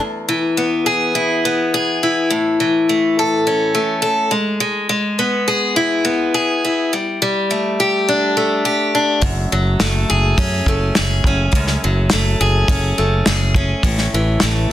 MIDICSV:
0, 0, Header, 1, 4, 480
1, 0, Start_track
1, 0, Tempo, 576923
1, 1913, Time_signature, 4, 2, 24, 8
1, 12247, End_track
2, 0, Start_track
2, 0, Title_t, "Steel-string acoustic guitar"
2, 0, Program_c, 0, 25
2, 0, Note_on_c, 0, 40, 50
2, 237, Note_on_c, 0, 52, 66
2, 477, Note_on_c, 0, 59, 60
2, 716, Note_on_c, 0, 68, 64
2, 957, Note_on_c, 0, 64, 64
2, 1193, Note_off_c, 0, 40, 0
2, 1197, Note_off_c, 0, 59, 0
2, 1207, Note_on_c, 0, 59, 60
2, 1438, Note_off_c, 0, 68, 0
2, 1448, Note_on_c, 0, 68, 65
2, 1685, Note_off_c, 0, 64, 0
2, 1689, Note_on_c, 0, 64, 55
2, 1918, Note_on_c, 0, 45, 59
2, 1920, Note_off_c, 0, 59, 0
2, 1920, Note_off_c, 0, 68, 0
2, 2160, Note_off_c, 0, 52, 0
2, 2164, Note_on_c, 0, 52, 58
2, 2407, Note_on_c, 0, 57, 66
2, 2653, Note_on_c, 0, 69, 71
2, 2882, Note_off_c, 0, 64, 0
2, 2885, Note_on_c, 0, 61, 71
2, 3106, Note_off_c, 0, 57, 0
2, 3115, Note_off_c, 0, 45, 0
2, 3116, Note_on_c, 0, 57, 60
2, 3334, Note_off_c, 0, 69, 0
2, 3344, Note_on_c, 0, 69, 68
2, 3358, Note_off_c, 0, 52, 0
2, 3586, Note_on_c, 0, 56, 61
2, 3589, Note_off_c, 0, 69, 0
2, 3595, Note_off_c, 0, 57, 0
2, 3599, Note_off_c, 0, 61, 0
2, 3820, Note_off_c, 0, 56, 0
2, 3830, Note_on_c, 0, 56, 67
2, 4061, Note_off_c, 0, 56, 0
2, 4071, Note_on_c, 0, 56, 69
2, 4316, Note_on_c, 0, 59, 60
2, 4556, Note_on_c, 0, 68, 65
2, 4794, Note_on_c, 0, 64, 70
2, 5021, Note_off_c, 0, 59, 0
2, 5031, Note_on_c, 0, 59, 58
2, 5268, Note_off_c, 0, 68, 0
2, 5272, Note_off_c, 0, 56, 0
2, 5278, Note_on_c, 0, 68, 58
2, 5519, Note_off_c, 0, 64, 0
2, 5529, Note_on_c, 0, 64, 58
2, 5752, Note_off_c, 0, 59, 0
2, 5756, Note_off_c, 0, 68, 0
2, 5762, Note_off_c, 0, 64, 0
2, 5765, Note_on_c, 0, 55, 56
2, 5996, Note_off_c, 0, 55, 0
2, 6006, Note_on_c, 0, 55, 67
2, 6245, Note_on_c, 0, 57, 56
2, 6488, Note_on_c, 0, 67, 67
2, 6727, Note_on_c, 0, 62, 68
2, 6959, Note_off_c, 0, 57, 0
2, 6962, Note_on_c, 0, 57, 58
2, 7188, Note_off_c, 0, 67, 0
2, 7198, Note_on_c, 0, 67, 68
2, 7201, Note_off_c, 0, 55, 0
2, 7434, Note_off_c, 0, 62, 0
2, 7444, Note_on_c, 0, 62, 56
2, 7676, Note_off_c, 0, 67, 0
2, 7678, Note_on_c, 0, 42, 60
2, 7680, Note_off_c, 0, 62, 0
2, 7923, Note_on_c, 0, 54, 61
2, 8153, Note_off_c, 0, 57, 0
2, 8156, Note_on_c, 0, 57, 62
2, 8400, Note_on_c, 0, 68, 73
2, 8640, Note_on_c, 0, 61, 63
2, 8877, Note_off_c, 0, 42, 0
2, 8883, Note_off_c, 0, 57, 0
2, 8887, Note_on_c, 0, 57, 63
2, 9114, Note_off_c, 0, 68, 0
2, 9119, Note_off_c, 0, 54, 0
2, 9124, Note_on_c, 0, 68, 69
2, 9370, Note_off_c, 0, 61, 0
2, 9374, Note_on_c, 0, 61, 62
2, 9612, Note_on_c, 0, 42, 57
2, 9850, Note_on_c, 0, 54, 61
2, 10086, Note_off_c, 0, 57, 0
2, 10090, Note_on_c, 0, 57, 66
2, 10312, Note_off_c, 0, 68, 0
2, 10322, Note_on_c, 0, 68, 77
2, 10557, Note_off_c, 0, 61, 0
2, 10560, Note_on_c, 0, 61, 67
2, 10796, Note_off_c, 0, 57, 0
2, 10800, Note_on_c, 0, 57, 58
2, 10804, Note_off_c, 0, 42, 0
2, 11033, Note_off_c, 0, 68, 0
2, 11043, Note_on_c, 0, 68, 68
2, 11044, Note_off_c, 0, 54, 0
2, 11278, Note_off_c, 0, 61, 0
2, 11281, Note_on_c, 0, 61, 59
2, 11518, Note_on_c, 0, 45, 56
2, 11520, Note_off_c, 0, 68, 0
2, 11767, Note_on_c, 0, 52, 60
2, 12003, Note_off_c, 0, 57, 0
2, 12006, Note_on_c, 0, 57, 69
2, 12247, Note_off_c, 0, 45, 0
2, 12247, Note_off_c, 0, 52, 0
2, 12247, Note_off_c, 0, 57, 0
2, 12247, Note_off_c, 0, 61, 0
2, 12247, End_track
3, 0, Start_track
3, 0, Title_t, "Fingered electric bass"
3, 0, Program_c, 1, 33
3, 7669, Note_on_c, 1, 30, 80
3, 7860, Note_off_c, 1, 30, 0
3, 7925, Note_on_c, 1, 30, 70
3, 8110, Note_off_c, 1, 30, 0
3, 8163, Note_on_c, 1, 30, 76
3, 8349, Note_off_c, 1, 30, 0
3, 8411, Note_on_c, 1, 30, 78
3, 8593, Note_off_c, 1, 30, 0
3, 8632, Note_on_c, 1, 42, 79
3, 8822, Note_off_c, 1, 42, 0
3, 8872, Note_on_c, 1, 30, 85
3, 9062, Note_off_c, 1, 30, 0
3, 9140, Note_on_c, 1, 30, 77
3, 9319, Note_off_c, 1, 30, 0
3, 9354, Note_on_c, 1, 30, 80
3, 9543, Note_off_c, 1, 30, 0
3, 9594, Note_on_c, 1, 37, 72
3, 9783, Note_off_c, 1, 37, 0
3, 9855, Note_on_c, 1, 30, 83
3, 10036, Note_off_c, 1, 30, 0
3, 10093, Note_on_c, 1, 30, 80
3, 10275, Note_off_c, 1, 30, 0
3, 10320, Note_on_c, 1, 30, 87
3, 10507, Note_off_c, 1, 30, 0
3, 10555, Note_on_c, 1, 30, 77
3, 10744, Note_off_c, 1, 30, 0
3, 10805, Note_on_c, 1, 30, 77
3, 10990, Note_off_c, 1, 30, 0
3, 11044, Note_on_c, 1, 30, 80
3, 11418, Note_off_c, 1, 30, 0
3, 11510, Note_on_c, 1, 33, 85
3, 11701, Note_off_c, 1, 33, 0
3, 11760, Note_on_c, 1, 33, 76
3, 11948, Note_off_c, 1, 33, 0
3, 12004, Note_on_c, 1, 33, 87
3, 12190, Note_off_c, 1, 33, 0
3, 12247, End_track
4, 0, Start_track
4, 0, Title_t, "Drums"
4, 7667, Note_on_c, 9, 46, 47
4, 7673, Note_on_c, 9, 36, 100
4, 7750, Note_off_c, 9, 46, 0
4, 7756, Note_off_c, 9, 36, 0
4, 8150, Note_on_c, 9, 46, 43
4, 8152, Note_on_c, 9, 38, 89
4, 8234, Note_off_c, 9, 46, 0
4, 8235, Note_off_c, 9, 38, 0
4, 8634, Note_on_c, 9, 36, 106
4, 8635, Note_on_c, 9, 46, 54
4, 8717, Note_off_c, 9, 36, 0
4, 8718, Note_off_c, 9, 46, 0
4, 8872, Note_on_c, 9, 36, 70
4, 8955, Note_off_c, 9, 36, 0
4, 9110, Note_on_c, 9, 46, 43
4, 9112, Note_on_c, 9, 38, 92
4, 9193, Note_off_c, 9, 46, 0
4, 9195, Note_off_c, 9, 38, 0
4, 9352, Note_on_c, 9, 36, 70
4, 9435, Note_off_c, 9, 36, 0
4, 9581, Note_on_c, 9, 46, 47
4, 9590, Note_on_c, 9, 36, 102
4, 9664, Note_off_c, 9, 46, 0
4, 9673, Note_off_c, 9, 36, 0
4, 9708, Note_on_c, 9, 38, 29
4, 9791, Note_off_c, 9, 38, 0
4, 10063, Note_on_c, 9, 46, 44
4, 10065, Note_on_c, 9, 38, 95
4, 10146, Note_off_c, 9, 46, 0
4, 10148, Note_off_c, 9, 38, 0
4, 10552, Note_on_c, 9, 36, 110
4, 10554, Note_on_c, 9, 46, 46
4, 10635, Note_off_c, 9, 36, 0
4, 10637, Note_off_c, 9, 46, 0
4, 11029, Note_on_c, 9, 46, 44
4, 11031, Note_on_c, 9, 38, 101
4, 11112, Note_off_c, 9, 46, 0
4, 11114, Note_off_c, 9, 38, 0
4, 11269, Note_on_c, 9, 36, 71
4, 11353, Note_off_c, 9, 36, 0
4, 11508, Note_on_c, 9, 36, 99
4, 11512, Note_on_c, 9, 46, 48
4, 11591, Note_off_c, 9, 36, 0
4, 11595, Note_off_c, 9, 46, 0
4, 11631, Note_on_c, 9, 38, 29
4, 11714, Note_off_c, 9, 38, 0
4, 11979, Note_on_c, 9, 46, 40
4, 11981, Note_on_c, 9, 38, 94
4, 12063, Note_off_c, 9, 46, 0
4, 12064, Note_off_c, 9, 38, 0
4, 12247, End_track
0, 0, End_of_file